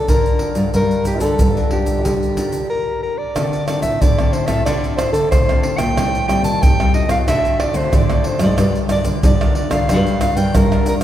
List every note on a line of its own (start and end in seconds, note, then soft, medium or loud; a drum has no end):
0.08 0.71 D3 medium
0.08 0.50 D3 medium
0.08 0.53 D4 medium
0.08 0.53 F4 soft
0.08 0.55 A#4 medium
0.08 0.53 A#4 medium
0.08 pandeiro medium
0.08 shaker medium
0.08 surdo medium
0.26 pandeiro soft
0.26 shaker soft
0.39 pandeiro medium
0.55 0.70 G2 medium
0.55 0.68 D4 medium
0.55 0.68 F4 medium
0.55 0.69 A#4 medium
0.55 pandeiro medium
0.55 shaker medium
0.55 surdo soft
0.74 1.21 G2 medium
0.74 1.36 G3 soft
0.74 1.05 D4 soft
0.74 1.05 F4 soft
0.74 1.05 A#4 medium
0.74 pandeiro medium
0.74 shaker medium
0.74 surdo medium
0.91 pandeiro soft
0.91 shaker soft
1.05 1.20 G4 medium
1.05 pandeiro medium
1.05 shaker medium
1.20 1.36 D3 medium
1.20 1.50 D4 medium
1.20 1.50 F4 medium
1.20 1.68 A4 medium
1.20 1.51 A#4 medium
1.20 pandeiro medium
1.20 shaker medium
1.20 surdo soft
1.39 2.05 G2 medium
1.39 2.02 D3 medium
1.39 pandeiro medium
1.39 shaker medium
1.39 surdo medium
1.57 2.16 D4 medium
1.57 2.17 F4 medium
1.57 2.17 A#4 medium
1.57 pandeiro soft
1.57 shaker soft
1.71 2.66 G4 medium
1.71 pandeiro medium
1.71 surdo soft
1.86 pandeiro medium
1.86 shaker medium
1.86 surdo soft
2.05 2.60 D3 medium
2.05 2.68 G3 soft
2.05 pandeiro medium
2.05 shaker medium
2.05 surdo medium
2.23 pandeiro soft
2.23 shaker soft
2.37 2.57 D4 medium
2.37 2.57 F4 soft
2.37 2.57 A#4 medium
2.37 pandeiro medium
2.37 shaker medium
2.37 surdo soft
2.52 pandeiro medium
2.52 shaker medium
2.70 3.00 A#4 medium
3.03 3.19 A#4 medium
3.18 3.67 D5 medium
3.36 3.77 D3 medium
3.36 3.98 D3 medium
3.36 3.55 C4 soft
3.36 3.55 F4 medium
3.36 3.56 A4 medium
3.36 pandeiro medium
3.36 tamborim medium
3.36 shaker medium
3.36 surdo medium
3.53 pandeiro soft
3.53 shaker soft
3.68 4.12 C4 soft
3.68 4.12 F4 soft
3.68 4.12 A4 medium
3.68 3.82 D5 medium
3.68 pandeiro medium
3.68 tamborim medium
3.68 shaker medium
3.82 3.97 A2 medium
3.82 4.03 E5 medium
3.82 pandeiro medium
3.82 shaker medium
3.82 surdo soft
4.01 4.64 A2 medium
4.01 4.43 D3 medium
4.01 4.34 D5 medium
4.01 pandeiro medium
4.01 shaker medium
4.01 surdo medium
4.19 4.46 C4 medium
4.19 4.46 F4 medium
4.19 4.46 A4 medium
4.19 pandeiro soft
4.19 tamborim medium
4.19 shaker soft
4.33 4.48 C5 medium
4.33 pandeiro medium
4.33 surdo soft
4.46 4.66 A2 medium
4.46 4.60 C4 medium
4.46 4.60 F4 medium
4.46 4.61 A4 medium
4.46 4.65 E5 medium
4.46 pandeiro medium
4.46 tamborim medium
4.46 shaker medium
4.46 surdo soft
4.66 5.29 D3 medium
4.66 5.08 D3 medium
4.66 4.97 C4 medium
4.66 4.97 F4 medium
4.66 4.98 A4 medium
4.66 4.96 D5 medium
4.66 pandeiro medium
4.66 tamborim medium
4.66 shaker medium
4.66 surdo medium
4.84 pandeiro soft
4.84 shaker soft
4.97 5.12 C5 medium
4.97 pandeiro medium
4.97 tamborim medium
4.97 shaker medium
4.97 surdo soft
5.12 5.28 D3 medium
5.12 5.42 C4 medium
5.12 5.42 F4 medium
5.12 5.29 A4 medium
5.12 5.43 A4 medium
5.12 pandeiro medium
5.12 shaker medium
5.31 5.94 A2 soft
5.31 5.81 D3 medium
5.31 5.62 C5 medium
5.31 pandeiro medium
5.31 tamborim medium
5.31 shaker medium
5.31 surdo medium
5.49 5.95 C4 medium
5.49 5.96 F4 medium
5.49 5.96 A4 medium
5.49 pandeiro soft
5.49 tamborim medium
5.49 shaker soft
5.63 5.79 C5 medium
5.63 pandeiro medium
5.78 5.93 A#2 medium
5.78 6.28 G5 medium
5.78 pandeiro medium
5.78 tamborim medium
5.78 shaker medium
5.78 surdo soft
5.96 6.38 A2 medium
5.96 6.60 A2 medium
5.96 6.17 G3 soft
5.96 6.17 C4 soft
5.96 6.17 D#4 medium
5.96 pandeiro medium
5.96 tamborim medium
5.96 shaker medium
5.96 surdo medium
6.15 pandeiro soft
6.15 shaker soft
6.28 6.60 G3 medium
6.28 6.60 C4 medium
6.28 6.60 D#4 medium
6.28 6.44 G5 medium
6.28 pandeiro medium
6.28 tamborim medium
6.28 shaker medium
6.43 6.58 D#3 medium
6.43 6.64 A5 medium
6.43 pandeiro medium
6.43 shaker medium
6.43 surdo soft
6.62 7.24 A2 medium
6.62 7.04 A3 medium
6.62 6.94 G5 loud
6.62 pandeiro medium
6.62 shaker medium
6.62 surdo loud
6.79 7.07 G3 medium
6.79 7.07 C4 medium
6.79 7.07 D#4 medium
6.79 pandeiro soft
6.79 tamborim medium
6.79 shaker soft
6.94 7.10 D#5 medium
6.94 pandeiro medium
7.08 7.28 A2 medium
7.08 7.70 A3 medium
7.08 7.70 C4 medium
7.08 7.70 F#4 medium
7.08 7.18 F5 medium
7.08 pandeiro medium
7.08 tamborim medium
7.08 shaker medium
7.08 surdo soft
7.28 7.69 D3 medium
7.28 7.90 D3 medium
7.28 7.62 E5 loud
7.28 pandeiro medium
7.28 tamborim medium
7.28 shaker medium
7.28 surdo medium
7.45 pandeiro soft
7.45 shaker soft
7.60 7.78 D5 medium
7.60 pandeiro medium
7.60 tamborim medium
7.60 surdo soft
7.73 7.89 D3 medium
7.73 8.03 A3 medium
7.73 8.03 C4 medium
7.73 8.03 F#4 medium
7.73 7.97 C5 medium
7.73 pandeiro medium
7.73 shaker medium
7.93 8.55 A2 soft
7.93 8.42 D3 medium
7.93 8.28 D5 medium
7.93 pandeiro medium
7.93 tamborim medium
7.93 shaker medium
7.93 surdo medium
8.09 8.56 A3 medium
8.09 8.56 C4 medium
8.09 8.56 F#4 medium
8.09 pandeiro soft
8.09 tamborim medium
8.09 shaker soft
8.24 8.42 C5 medium
8.24 pandeiro medium
8.39 8.55 G#2 medium
8.39 8.78 D5 medium
8.39 pandeiro medium
8.39 tamborim medium
8.39 shaker medium
8.39 surdo soft
8.58 9.00 G2 medium
8.58 9.20 G3 medium
8.58 8.77 D4 medium
8.58 8.78 F4 medium
8.58 8.78 A#4 medium
8.58 pandeiro medium
8.58 tamborim medium
8.58 shaker medium
8.58 surdo medium
8.75 pandeiro soft
8.75 shaker soft
8.89 9.35 D4 soft
8.89 9.35 F4 medium
8.89 9.35 A#4 medium
8.89 9.07 D5 medium
8.89 pandeiro medium
8.89 tamborim medium
8.89 shaker medium
9.04 9.20 D3 medium
9.04 pandeiro medium
9.04 shaker medium
9.04 surdo soft
9.23 9.86 D3 medium
9.23 9.65 G3 medium
9.23 9.55 D5 medium
9.23 pandeiro medium
9.23 shaker medium
9.23 surdo medium
9.41 9.69 D4 medium
9.41 9.69 F4 medium
9.41 9.69 A#4 medium
9.41 pandeiro soft
9.41 tamborim medium
9.41 shaker soft
9.55 9.73 D5 medium
9.55 pandeiro medium
9.71 9.88 D3 medium
9.71 9.83 D4 medium
9.71 9.83 F4 medium
9.71 9.84 A#4 medium
9.71 10.21 F5 medium
9.71 pandeiro medium
9.71 tamborim medium
9.71 shaker medium
9.71 surdo soft
9.89 10.31 G2 medium
9.89 10.51 G3 medium
9.89 10.20 D4 medium
9.89 10.20 F4 medium
9.89 10.20 A#4 medium
9.89 pandeiro medium
9.89 tamborim medium
9.89 shaker medium
9.89 surdo medium
10.06 pandeiro soft
10.06 shaker soft
10.21 10.38 F5 medium
10.21 pandeiro medium
10.21 tamborim medium
10.21 shaker medium
10.21 surdo soft
10.35 10.51 G2 medium
10.35 10.65 D4 medium
10.35 10.65 F4 medium
10.35 10.65 A#4 medium
10.35 10.58 G5 medium
10.35 pandeiro medium
10.35 shaker medium
10.54 11.04 D3 soft
10.54 11.03 G3 medium
10.54 10.88 A#4 medium
10.54 pandeiro medium
10.54 tamborim medium
10.54 shaker medium
10.54 surdo medium
10.72 11.04 D4 medium
10.72 11.04 F4 medium
10.72 11.04 A#4 medium
10.72 pandeiro soft
10.72 tamborim medium
10.72 shaker soft
10.86 10.95 A#4 medium
10.86 pandeiro medium
10.86 shaker medium
11.01 11.04 G2 medium